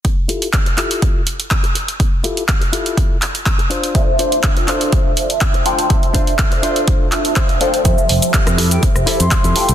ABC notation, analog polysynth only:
X:1
M:4/4
L:1/8
Q:1/4=123
K:F
V:1 name="Analog polysynth"
z8 | z8 | [DFAce]6- [DFAce] [DFAcg] | [DFAce]6- [DFAce] [DFAcg] |
[F,GAce]6- [F,GAce] [FGAcg] |]